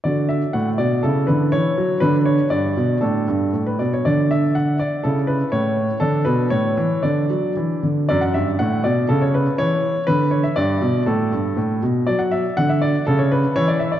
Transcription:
<<
  \new Staff \with { instrumentName = "Grand piano" } { \time 2/4 \key d \major \tempo 4 = 120 << { d''8 e''8 fis''8 d''8 | a'8 b'8 cis''4 | b'8 cis''8 d''4 | a'4~ a'16 b'16 d''16 cis''16 |
d''8 e''8 fis''8 d''8 | a'8 b'8 cis''4 | a'8 b'8 cis''4 | d''4 r4 |
d''16 fis''16 e''8 fis''8 d''8 | a'16 cis''16 b'8 cis''4 | b'8 cis''16 e''16 d''4 | a'4. r8 |
d''16 fis''16 e''8 fis''16 e''16 d''8 | a'16 cis''16 b'8 cis''16 d''16 e''16 d''16 | } \\ { fis'2 | e'2 | d'4 r4 | d'4 r4 |
d'2 | e'2 | d'4 r4 | d'2 |
r2 | r2 | r2 | r2 |
r2 | r2 | } >> }
  \new Staff \with { instrumentName = "Grand piano" } { \clef bass \time 2/4 \key d \major d4 a,8 b,8 | cis8 d8 e8 fis8 | d4 g,8 b,8 | a,8 g,8 a,8 b,8 |
d2 | cis4 a,4 | d8 b,8 a,8 e8 | d8 fis8 e8 d8 |
fis,8 g,8 a,8 b,8 | cis4 e4 | d4 g,8 b,8 | a,8 g,8 a,8 b,8 |
fis4 d4 | cis4 e4 | }
>>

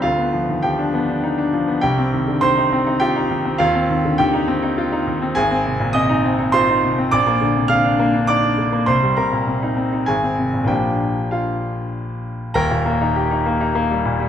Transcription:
<<
  \new Staff \with { instrumentName = "Grand piano" } { \time 3/4 \key c \minor \tempo 4 = 101 <f' f''>4 <g' g''>4. r8 | <g' g''>4 <c'' c'''>4 <g' g''>4 | <f' f''>4 <g' g''>4. r8 | \key ees \major <aes' aes''>4 <ees'' ees'''>4 <c'' c'''>4 |
<d'' d'''>4 <f'' f'''>4 <d'' d'''>4 | <c'' c'''>8 <bes' bes''>4. <aes' aes''>4 | <g' g''>4 <f' f''>4 r4 | <bes' g'' bes''>2. | }
  \new Staff \with { instrumentName = "Grand piano" } { \time 3/4 \key c \minor d,16 b16 f16 ees16 f16 d'16 b16 d'16 ees'16 d'16 f16 b16 | c,16 c'16 ees16 d16 ees16 ees'16 c'16 ees'16 f'16 ees'16 ees16 c'16 | ees,16 c'16 ees16 d16 ees16 ees'16 c'16 ees'16 f'16 ees'16 ees16 c'16 | \key ees \major aes,,16 c'16 c16 bes,16 c16 ees'16 c'16 ees'16 f'16 ees'16 c16 c'16 |
bes,,16 bes16 d16 c16 d16 d'16 bes16 d'16 ees'16 d'16 d16 bes16 | c,16 g16 c16 bes,16 c16 ees'16 c'16 ees'16 aes,,16 c'16 c16 bes,16 | <bes,, f bes d'>2. | <ees,, ees,>16 bes,16 bes16 ees'16 g'16 ees'16 bes16 ees'16 bes16 g16 bes,16 g16 | }
>>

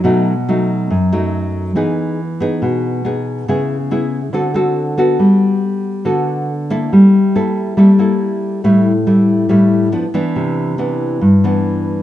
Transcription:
\new Staff \with { instrumentName = "Nylon-string guitar" } { \time 4/4 \key b \mixolydian \tempo 4 = 140 << { <fis a dis'>8 r8 <fis a dis'>4 r8 <fis a dis'>4. | <b dis' gis'>4 r8 <b dis' gis'>4. <b dis' gis'>4 | <b e' gis'>8 r8 <b e' gis'>8 r8 <c' fis' a'>8 <c' fis' a'>4 <b fis' a'>8~ | \key g \major <b fis' a'>4 r4 <b fis' a'>4 r8 <ais e' a'>8~ |
<ais e' a'>4 <bes e' a'>4 <bes e' a'>8 <bes e' a'>4. | <g a e'>8 r8 <g a e'>4 <g a e'>4 <f b d'>8 <e b d'>8~ | <e b d'>4 <e b d'>4 r8 <e b d'>4. | } \\ { b,2 fis,2 | e2 b,2 | cis2 d2 | g2 d2 |
g2 g2 | a,2 a,4 r4 | c2 g,2 | } >> }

